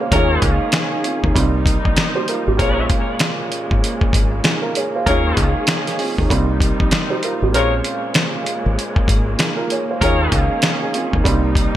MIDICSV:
0, 0, Header, 1, 6, 480
1, 0, Start_track
1, 0, Tempo, 618557
1, 92, Time_signature, 4, 2, 24, 8
1, 9130, End_track
2, 0, Start_track
2, 0, Title_t, "Horn section"
2, 0, Program_c, 0, 61
2, 89, Note_on_c, 0, 70, 106
2, 89, Note_on_c, 0, 73, 98
2, 90, Note_on_c, 0, 68, 91
2, 419, Note_off_c, 0, 68, 0
2, 419, Note_off_c, 0, 70, 0
2, 419, Note_off_c, 0, 73, 0
2, 2008, Note_on_c, 0, 68, 98
2, 2008, Note_on_c, 0, 70, 100
2, 2008, Note_on_c, 0, 73, 112
2, 2214, Note_off_c, 0, 68, 0
2, 2214, Note_off_c, 0, 70, 0
2, 2214, Note_off_c, 0, 73, 0
2, 3932, Note_on_c, 0, 73, 103
2, 3933, Note_on_c, 0, 68, 100
2, 3933, Note_on_c, 0, 70, 99
2, 4260, Note_off_c, 0, 68, 0
2, 4260, Note_off_c, 0, 73, 0
2, 4261, Note_off_c, 0, 70, 0
2, 5858, Note_on_c, 0, 68, 101
2, 5858, Note_on_c, 0, 70, 93
2, 5858, Note_on_c, 0, 73, 108
2, 6009, Note_off_c, 0, 68, 0
2, 6009, Note_off_c, 0, 70, 0
2, 6009, Note_off_c, 0, 73, 0
2, 7768, Note_on_c, 0, 70, 104
2, 7769, Note_on_c, 0, 68, 96
2, 7769, Note_on_c, 0, 73, 103
2, 8098, Note_off_c, 0, 68, 0
2, 8098, Note_off_c, 0, 70, 0
2, 8098, Note_off_c, 0, 73, 0
2, 9130, End_track
3, 0, Start_track
3, 0, Title_t, "Upright piano"
3, 0, Program_c, 1, 0
3, 0, Control_c, 1, 64, 127
3, 0, Note_on_c, 1, 63, 54
3, 0, Note_on_c, 1, 65, 61
3, 0, Note_on_c, 1, 68, 59
3, 0, Note_on_c, 1, 70, 75
3, 0, Note_on_c, 1, 73, 74
3, 3, Note_on_c, 1, 77, 67
3, 9, Note_on_c, 1, 72, 55
3, 87, Note_on_c, 1, 51, 88
3, 94, Note_on_c, 1, 56, 78
3, 101, Note_on_c, 1, 58, 79
3, 102, Control_c, 1, 64, 0
3, 104, Note_off_c, 1, 73, 0
3, 105, Note_off_c, 1, 70, 0
3, 106, Note_off_c, 1, 68, 0
3, 107, Note_off_c, 1, 65, 0
3, 108, Note_off_c, 1, 63, 0
3, 108, Note_on_c, 1, 61, 83
3, 115, Note_on_c, 1, 65, 97
3, 229, Note_off_c, 1, 77, 0
3, 230, Control_c, 1, 64, 127
3, 231, Note_off_c, 1, 72, 0
3, 576, Note_off_c, 1, 58, 0
3, 580, Note_off_c, 1, 61, 0
3, 583, Note_off_c, 1, 65, 0
3, 717, Note_on_c, 1, 68, 68
3, 722, Note_on_c, 1, 63, 59
3, 787, Note_off_c, 1, 51, 0
3, 791, Note_off_c, 1, 56, 0
3, 806, Note_off_c, 1, 68, 0
3, 809, Note_off_c, 1, 63, 0
3, 809, Note_on_c, 1, 65, 71
3, 814, Note_on_c, 1, 60, 55
3, 949, Note_off_c, 1, 65, 0
3, 952, Note_off_c, 1, 60, 0
3, 972, Note_on_c, 1, 63, 76
3, 977, Note_on_c, 1, 58, 59
3, 1041, Note_off_c, 1, 58, 0
3, 1044, Note_on_c, 1, 55, 94
3, 1052, Note_on_c, 1, 58, 82
3, 1060, Note_off_c, 1, 63, 0
3, 1061, Control_c, 1, 64, 0
3, 1062, Note_on_c, 1, 60, 82
3, 1071, Note_on_c, 1, 63, 93
3, 1197, Control_c, 1, 64, 127
3, 1297, Note_off_c, 1, 60, 0
3, 1301, Note_off_c, 1, 63, 0
3, 1453, Note_off_c, 1, 55, 0
3, 1457, Note_off_c, 1, 58, 0
3, 1672, Note_on_c, 1, 72, 70
3, 1676, Note_on_c, 1, 67, 56
3, 1764, Note_off_c, 1, 72, 0
3, 1766, Note_off_c, 1, 67, 0
3, 1778, Note_on_c, 1, 70, 75
3, 1782, Note_on_c, 1, 65, 66
3, 1914, Note_off_c, 1, 70, 0
3, 1916, Note_off_c, 1, 65, 0
3, 1924, Note_on_c, 1, 67, 69
3, 1929, Note_on_c, 1, 60, 56
3, 1997, Note_on_c, 1, 46, 87
3, 2004, Note_on_c, 1, 56, 81
3, 2011, Note_on_c, 1, 72, 77
3, 2018, Note_on_c, 1, 61, 74
3, 2022, Control_c, 1, 64, 0
3, 2025, Note_on_c, 1, 65, 91
3, 2149, Note_off_c, 1, 67, 0
3, 2152, Note_off_c, 1, 60, 0
3, 2169, Control_c, 1, 64, 127
3, 2702, Note_off_c, 1, 46, 0
3, 2706, Note_off_c, 1, 56, 0
3, 2709, Note_off_c, 1, 72, 0
3, 2713, Note_off_c, 1, 61, 0
3, 2716, Note_off_c, 1, 65, 0
3, 3446, Note_on_c, 1, 68, 65
3, 3451, Note_on_c, 1, 63, 55
3, 3586, Note_on_c, 1, 70, 77
3, 3588, Note_off_c, 1, 68, 0
3, 3590, Note_off_c, 1, 63, 0
3, 3591, Note_on_c, 1, 65, 60
3, 3681, Note_off_c, 1, 70, 0
3, 3683, Note_off_c, 1, 65, 0
3, 3700, Note_on_c, 1, 73, 73
3, 3705, Note_on_c, 1, 68, 61
3, 3835, Note_off_c, 1, 73, 0
3, 3838, Note_off_c, 1, 68, 0
3, 3843, Note_on_c, 1, 77, 66
3, 3848, Note_on_c, 1, 72, 53
3, 3928, Note_on_c, 1, 51, 89
3, 3935, Note_on_c, 1, 56, 80
3, 3941, Control_c, 1, 64, 0
3, 3942, Note_on_c, 1, 58, 80
3, 3949, Note_on_c, 1, 61, 84
3, 3956, Note_on_c, 1, 65, 94
3, 4069, Note_off_c, 1, 77, 0
3, 4071, Note_off_c, 1, 72, 0
3, 4080, Control_c, 1, 64, 127
3, 4417, Note_off_c, 1, 58, 0
3, 4420, Note_off_c, 1, 61, 0
3, 4424, Note_off_c, 1, 65, 0
3, 4557, Note_on_c, 1, 68, 68
3, 4561, Note_on_c, 1, 63, 59
3, 4628, Note_off_c, 1, 51, 0
3, 4631, Note_off_c, 1, 56, 0
3, 4647, Note_off_c, 1, 68, 0
3, 4649, Note_off_c, 1, 63, 0
3, 4649, Note_on_c, 1, 65, 71
3, 4654, Note_on_c, 1, 60, 57
3, 4789, Note_off_c, 1, 65, 0
3, 4792, Note_off_c, 1, 60, 0
3, 4812, Note_on_c, 1, 63, 74
3, 4817, Note_on_c, 1, 58, 61
3, 4881, Note_off_c, 1, 58, 0
3, 4883, Note_on_c, 1, 55, 94
3, 4893, Note_on_c, 1, 58, 77
3, 4900, Note_off_c, 1, 63, 0
3, 4901, Control_c, 1, 64, 0
3, 4902, Note_on_c, 1, 60, 83
3, 4912, Note_on_c, 1, 63, 93
3, 5028, Control_c, 1, 64, 127
3, 5137, Note_off_c, 1, 60, 0
3, 5142, Note_off_c, 1, 63, 0
3, 5292, Note_off_c, 1, 55, 0
3, 5297, Note_off_c, 1, 58, 0
3, 5511, Note_on_c, 1, 72, 71
3, 5516, Note_on_c, 1, 67, 54
3, 5604, Note_off_c, 1, 72, 0
3, 5606, Note_off_c, 1, 67, 0
3, 5618, Note_on_c, 1, 70, 71
3, 5622, Note_on_c, 1, 65, 64
3, 5754, Note_off_c, 1, 70, 0
3, 5756, Note_off_c, 1, 65, 0
3, 5764, Note_on_c, 1, 67, 70
3, 5769, Note_on_c, 1, 60, 56
3, 5837, Note_on_c, 1, 46, 84
3, 5845, Note_on_c, 1, 56, 78
3, 5851, Note_on_c, 1, 72, 77
3, 5859, Note_on_c, 1, 61, 74
3, 5862, Control_c, 1, 64, 0
3, 5865, Note_on_c, 1, 65, 91
3, 5975, Control_c, 1, 64, 127
3, 5989, Note_off_c, 1, 67, 0
3, 5992, Note_off_c, 1, 60, 0
3, 6542, Note_off_c, 1, 46, 0
3, 6546, Note_off_c, 1, 56, 0
3, 6549, Note_off_c, 1, 72, 0
3, 6553, Note_off_c, 1, 61, 0
3, 6556, Note_off_c, 1, 65, 0
3, 7286, Note_on_c, 1, 68, 61
3, 7291, Note_on_c, 1, 63, 56
3, 7426, Note_on_c, 1, 70, 80
3, 7428, Note_off_c, 1, 68, 0
3, 7430, Note_off_c, 1, 63, 0
3, 7431, Note_on_c, 1, 65, 63
3, 7521, Note_off_c, 1, 70, 0
3, 7523, Note_off_c, 1, 65, 0
3, 7541, Note_on_c, 1, 73, 75
3, 7546, Note_on_c, 1, 68, 59
3, 7675, Note_off_c, 1, 73, 0
3, 7678, Note_off_c, 1, 68, 0
3, 7684, Note_on_c, 1, 77, 66
3, 7689, Note_on_c, 1, 72, 55
3, 7768, Note_on_c, 1, 51, 91
3, 7776, Note_on_c, 1, 56, 79
3, 7781, Control_c, 1, 64, 0
3, 7782, Note_on_c, 1, 58, 81
3, 7789, Note_on_c, 1, 61, 83
3, 7796, Note_on_c, 1, 65, 98
3, 7909, Note_off_c, 1, 77, 0
3, 7911, Note_off_c, 1, 72, 0
3, 7929, Control_c, 1, 64, 127
3, 8257, Note_off_c, 1, 58, 0
3, 8260, Note_off_c, 1, 61, 0
3, 8264, Note_off_c, 1, 65, 0
3, 8398, Note_on_c, 1, 68, 68
3, 8402, Note_on_c, 1, 63, 58
3, 8468, Note_off_c, 1, 51, 0
3, 8472, Note_off_c, 1, 56, 0
3, 8487, Note_off_c, 1, 68, 0
3, 8488, Note_on_c, 1, 65, 71
3, 8489, Note_off_c, 1, 63, 0
3, 8493, Note_on_c, 1, 60, 58
3, 8629, Note_off_c, 1, 65, 0
3, 8631, Note_off_c, 1, 60, 0
3, 8650, Note_on_c, 1, 63, 74
3, 8655, Note_on_c, 1, 58, 61
3, 8719, Note_off_c, 1, 58, 0
3, 8721, Note_on_c, 1, 55, 99
3, 8731, Note_on_c, 1, 58, 83
3, 8738, Note_off_c, 1, 63, 0
3, 8740, Note_on_c, 1, 60, 84
3, 8743, Control_c, 1, 64, 0
3, 8750, Note_on_c, 1, 63, 93
3, 8860, Control_c, 1, 64, 127
3, 8976, Note_off_c, 1, 60, 0
3, 8981, Note_off_c, 1, 63, 0
3, 9130, Note_off_c, 1, 55, 0
3, 9130, Note_off_c, 1, 58, 0
3, 9130, End_track
4, 0, Start_track
4, 0, Title_t, "String section"
4, 0, Program_c, 2, 48
4, 0, Note_on_c, 2, 58, 94
4, 85, Note_on_c, 2, 68, 86
4, 86, Note_on_c, 2, 51, 82
4, 86, Note_on_c, 2, 61, 74
4, 1026, Note_off_c, 2, 58, 0
4, 1039, Note_off_c, 2, 51, 0
4, 1039, Note_off_c, 2, 61, 0
4, 1039, Note_off_c, 2, 68, 0
4, 1054, Note_on_c, 2, 48, 81
4, 1054, Note_on_c, 2, 55, 69
4, 1054, Note_on_c, 2, 58, 80
4, 1054, Note_on_c, 2, 63, 96
4, 2001, Note_off_c, 2, 58, 0
4, 2003, Note_off_c, 2, 48, 0
4, 2003, Note_off_c, 2, 55, 0
4, 2003, Note_off_c, 2, 63, 0
4, 2010, Note_on_c, 2, 49, 77
4, 2010, Note_on_c, 2, 56, 80
4, 2010, Note_on_c, 2, 58, 89
4, 3911, Note_off_c, 2, 56, 0
4, 3912, Note_off_c, 2, 49, 0
4, 3943, Note_on_c, 2, 51, 83
4, 3943, Note_on_c, 2, 61, 74
4, 3943, Note_on_c, 2, 68, 85
4, 4888, Note_off_c, 2, 51, 0
4, 4888, Note_off_c, 2, 61, 0
4, 4888, Note_off_c, 2, 68, 0
4, 4899, Note_on_c, 2, 48, 84
4, 4899, Note_on_c, 2, 55, 68
4, 4899, Note_on_c, 2, 63, 88
4, 5820, Note_off_c, 2, 58, 0
4, 5846, Note_off_c, 2, 48, 0
4, 5846, Note_off_c, 2, 55, 0
4, 5846, Note_off_c, 2, 63, 0
4, 5858, Note_on_c, 2, 49, 79
4, 5858, Note_on_c, 2, 58, 96
4, 5859, Note_on_c, 2, 56, 77
4, 7756, Note_off_c, 2, 49, 0
4, 7756, Note_off_c, 2, 56, 0
4, 7766, Note_on_c, 2, 51, 83
4, 7767, Note_on_c, 2, 61, 74
4, 7767, Note_on_c, 2, 68, 85
4, 8706, Note_off_c, 2, 58, 0
4, 8719, Note_off_c, 2, 51, 0
4, 8720, Note_off_c, 2, 61, 0
4, 8720, Note_off_c, 2, 68, 0
4, 8733, Note_on_c, 2, 58, 77
4, 8734, Note_on_c, 2, 48, 85
4, 8734, Note_on_c, 2, 55, 71
4, 8734, Note_on_c, 2, 63, 98
4, 9130, Note_off_c, 2, 48, 0
4, 9130, Note_off_c, 2, 55, 0
4, 9130, Note_off_c, 2, 58, 0
4, 9130, Note_off_c, 2, 63, 0
4, 9130, End_track
5, 0, Start_track
5, 0, Title_t, "Fingered electric bass"
5, 0, Program_c, 3, 33
5, 92, Note_on_c, 3, 39, 104
5, 292, Note_off_c, 3, 39, 0
5, 328, Note_on_c, 3, 37, 88
5, 452, Note_off_c, 3, 37, 0
5, 961, Note_on_c, 3, 39, 88
5, 1038, Note_off_c, 3, 39, 0
5, 1053, Note_on_c, 3, 36, 108
5, 1374, Note_off_c, 3, 36, 0
5, 1438, Note_on_c, 3, 34, 94
5, 1516, Note_off_c, 3, 34, 0
5, 1920, Note_on_c, 3, 32, 76
5, 2012, Note_off_c, 3, 32, 0
5, 2012, Note_on_c, 3, 34, 115
5, 2212, Note_off_c, 3, 34, 0
5, 2880, Note_on_c, 3, 32, 100
5, 2958, Note_off_c, 3, 32, 0
5, 3206, Note_on_c, 3, 32, 88
5, 3409, Note_off_c, 3, 32, 0
5, 3932, Note_on_c, 3, 39, 102
5, 4132, Note_off_c, 3, 39, 0
5, 4169, Note_on_c, 3, 37, 89
5, 4292, Note_off_c, 3, 37, 0
5, 4800, Note_on_c, 3, 39, 86
5, 4877, Note_off_c, 3, 39, 0
5, 4893, Note_on_c, 3, 36, 104
5, 5214, Note_off_c, 3, 36, 0
5, 5278, Note_on_c, 3, 34, 96
5, 5356, Note_off_c, 3, 34, 0
5, 5759, Note_on_c, 3, 32, 77
5, 5854, Note_off_c, 3, 32, 0
5, 5854, Note_on_c, 3, 34, 117
5, 6053, Note_off_c, 3, 34, 0
5, 6719, Note_on_c, 3, 32, 97
5, 6797, Note_off_c, 3, 32, 0
5, 7046, Note_on_c, 3, 32, 85
5, 7248, Note_off_c, 3, 32, 0
5, 7773, Note_on_c, 3, 39, 105
5, 7972, Note_off_c, 3, 39, 0
5, 8009, Note_on_c, 3, 37, 91
5, 8132, Note_off_c, 3, 37, 0
5, 8641, Note_on_c, 3, 39, 89
5, 8718, Note_off_c, 3, 39, 0
5, 8733, Note_on_c, 3, 36, 102
5, 9054, Note_off_c, 3, 36, 0
5, 9130, End_track
6, 0, Start_track
6, 0, Title_t, "Drums"
6, 91, Note_on_c, 9, 36, 119
6, 92, Note_on_c, 9, 42, 91
6, 169, Note_off_c, 9, 36, 0
6, 170, Note_off_c, 9, 42, 0
6, 326, Note_on_c, 9, 42, 83
6, 328, Note_on_c, 9, 36, 106
6, 403, Note_off_c, 9, 42, 0
6, 405, Note_off_c, 9, 36, 0
6, 559, Note_on_c, 9, 42, 99
6, 565, Note_on_c, 9, 40, 101
6, 571, Note_on_c, 9, 38, 125
6, 636, Note_off_c, 9, 42, 0
6, 643, Note_off_c, 9, 40, 0
6, 648, Note_off_c, 9, 38, 0
6, 809, Note_on_c, 9, 42, 78
6, 887, Note_off_c, 9, 42, 0
6, 960, Note_on_c, 9, 36, 95
6, 1037, Note_off_c, 9, 36, 0
6, 1052, Note_on_c, 9, 36, 97
6, 1058, Note_on_c, 9, 42, 83
6, 1130, Note_off_c, 9, 36, 0
6, 1136, Note_off_c, 9, 42, 0
6, 1286, Note_on_c, 9, 36, 95
6, 1295, Note_on_c, 9, 42, 92
6, 1363, Note_off_c, 9, 36, 0
6, 1372, Note_off_c, 9, 42, 0
6, 1437, Note_on_c, 9, 36, 97
6, 1515, Note_off_c, 9, 36, 0
6, 1525, Note_on_c, 9, 42, 92
6, 1528, Note_on_c, 9, 40, 90
6, 1534, Note_on_c, 9, 38, 113
6, 1603, Note_off_c, 9, 42, 0
6, 1606, Note_off_c, 9, 40, 0
6, 1612, Note_off_c, 9, 38, 0
6, 1768, Note_on_c, 9, 42, 80
6, 1846, Note_off_c, 9, 42, 0
6, 2012, Note_on_c, 9, 36, 120
6, 2014, Note_on_c, 9, 42, 89
6, 2089, Note_off_c, 9, 36, 0
6, 2092, Note_off_c, 9, 42, 0
6, 2247, Note_on_c, 9, 42, 79
6, 2248, Note_on_c, 9, 36, 103
6, 2324, Note_off_c, 9, 42, 0
6, 2326, Note_off_c, 9, 36, 0
6, 2479, Note_on_c, 9, 42, 101
6, 2485, Note_on_c, 9, 40, 102
6, 2491, Note_on_c, 9, 38, 124
6, 2556, Note_off_c, 9, 42, 0
6, 2563, Note_off_c, 9, 40, 0
6, 2568, Note_off_c, 9, 38, 0
6, 2729, Note_on_c, 9, 42, 80
6, 2806, Note_off_c, 9, 42, 0
6, 2880, Note_on_c, 9, 36, 94
6, 2957, Note_off_c, 9, 36, 0
6, 2979, Note_on_c, 9, 42, 83
6, 3056, Note_off_c, 9, 42, 0
6, 3115, Note_on_c, 9, 36, 105
6, 3192, Note_off_c, 9, 36, 0
6, 3205, Note_on_c, 9, 36, 94
6, 3215, Note_on_c, 9, 42, 90
6, 3283, Note_off_c, 9, 36, 0
6, 3292, Note_off_c, 9, 42, 0
6, 3445, Note_on_c, 9, 42, 92
6, 3448, Note_on_c, 9, 40, 91
6, 3454, Note_on_c, 9, 38, 116
6, 3522, Note_off_c, 9, 42, 0
6, 3526, Note_off_c, 9, 40, 0
6, 3531, Note_off_c, 9, 38, 0
6, 3688, Note_on_c, 9, 42, 85
6, 3766, Note_off_c, 9, 42, 0
6, 3931, Note_on_c, 9, 36, 119
6, 3934, Note_on_c, 9, 42, 89
6, 4009, Note_off_c, 9, 36, 0
6, 4011, Note_off_c, 9, 42, 0
6, 4167, Note_on_c, 9, 42, 84
6, 4168, Note_on_c, 9, 36, 102
6, 4245, Note_off_c, 9, 42, 0
6, 4246, Note_off_c, 9, 36, 0
6, 4399, Note_on_c, 9, 42, 98
6, 4406, Note_on_c, 9, 40, 98
6, 4411, Note_on_c, 9, 38, 122
6, 4477, Note_off_c, 9, 42, 0
6, 4483, Note_off_c, 9, 40, 0
6, 4489, Note_off_c, 9, 38, 0
6, 4558, Note_on_c, 9, 42, 56
6, 4565, Note_on_c, 9, 38, 35
6, 4636, Note_off_c, 9, 42, 0
6, 4642, Note_off_c, 9, 38, 0
6, 4648, Note_on_c, 9, 46, 58
6, 4725, Note_off_c, 9, 46, 0
6, 4799, Note_on_c, 9, 36, 96
6, 4877, Note_off_c, 9, 36, 0
6, 4892, Note_on_c, 9, 36, 96
6, 4898, Note_on_c, 9, 42, 86
6, 4969, Note_off_c, 9, 36, 0
6, 4975, Note_off_c, 9, 42, 0
6, 5125, Note_on_c, 9, 36, 94
6, 5134, Note_on_c, 9, 42, 94
6, 5203, Note_off_c, 9, 36, 0
6, 5212, Note_off_c, 9, 42, 0
6, 5277, Note_on_c, 9, 36, 101
6, 5355, Note_off_c, 9, 36, 0
6, 5364, Note_on_c, 9, 42, 95
6, 5368, Note_on_c, 9, 40, 89
6, 5373, Note_on_c, 9, 38, 113
6, 5442, Note_off_c, 9, 42, 0
6, 5445, Note_off_c, 9, 40, 0
6, 5451, Note_off_c, 9, 38, 0
6, 5608, Note_on_c, 9, 42, 78
6, 5686, Note_off_c, 9, 42, 0
6, 5854, Note_on_c, 9, 42, 93
6, 5932, Note_off_c, 9, 42, 0
6, 6087, Note_on_c, 9, 42, 80
6, 6165, Note_off_c, 9, 42, 0
6, 6319, Note_on_c, 9, 42, 98
6, 6325, Note_on_c, 9, 40, 99
6, 6331, Note_on_c, 9, 38, 126
6, 6397, Note_off_c, 9, 42, 0
6, 6403, Note_off_c, 9, 40, 0
6, 6409, Note_off_c, 9, 38, 0
6, 6568, Note_on_c, 9, 42, 79
6, 6646, Note_off_c, 9, 42, 0
6, 6819, Note_on_c, 9, 42, 85
6, 6896, Note_off_c, 9, 42, 0
6, 6955, Note_on_c, 9, 36, 101
6, 7032, Note_off_c, 9, 36, 0
6, 7046, Note_on_c, 9, 36, 95
6, 7055, Note_on_c, 9, 42, 94
6, 7123, Note_off_c, 9, 36, 0
6, 7132, Note_off_c, 9, 42, 0
6, 7285, Note_on_c, 9, 42, 90
6, 7288, Note_on_c, 9, 40, 88
6, 7294, Note_on_c, 9, 38, 115
6, 7363, Note_off_c, 9, 42, 0
6, 7366, Note_off_c, 9, 40, 0
6, 7372, Note_off_c, 9, 38, 0
6, 7529, Note_on_c, 9, 42, 83
6, 7607, Note_off_c, 9, 42, 0
6, 7772, Note_on_c, 9, 36, 119
6, 7775, Note_on_c, 9, 42, 91
6, 7849, Note_off_c, 9, 36, 0
6, 7852, Note_off_c, 9, 42, 0
6, 8008, Note_on_c, 9, 42, 84
6, 8009, Note_on_c, 9, 36, 101
6, 8086, Note_off_c, 9, 36, 0
6, 8086, Note_off_c, 9, 42, 0
6, 8241, Note_on_c, 9, 42, 102
6, 8247, Note_on_c, 9, 40, 99
6, 8253, Note_on_c, 9, 38, 127
6, 8318, Note_off_c, 9, 42, 0
6, 8325, Note_off_c, 9, 40, 0
6, 8330, Note_off_c, 9, 38, 0
6, 8490, Note_on_c, 9, 42, 78
6, 8567, Note_off_c, 9, 42, 0
6, 8640, Note_on_c, 9, 36, 98
6, 8718, Note_off_c, 9, 36, 0
6, 8733, Note_on_c, 9, 36, 95
6, 8740, Note_on_c, 9, 42, 88
6, 8810, Note_off_c, 9, 36, 0
6, 8817, Note_off_c, 9, 42, 0
6, 8966, Note_on_c, 9, 36, 100
6, 8976, Note_on_c, 9, 42, 91
6, 9043, Note_off_c, 9, 36, 0
6, 9053, Note_off_c, 9, 42, 0
6, 9130, End_track
0, 0, End_of_file